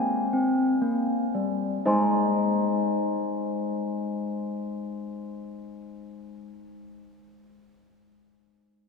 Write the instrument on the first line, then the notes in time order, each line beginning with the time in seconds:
handbells
Already playing: A#3 C5 G#5
0.33 C4
0.82 A#3
1.35 G3
1.86 G#3 D#4 C5 D#5 G#5 C6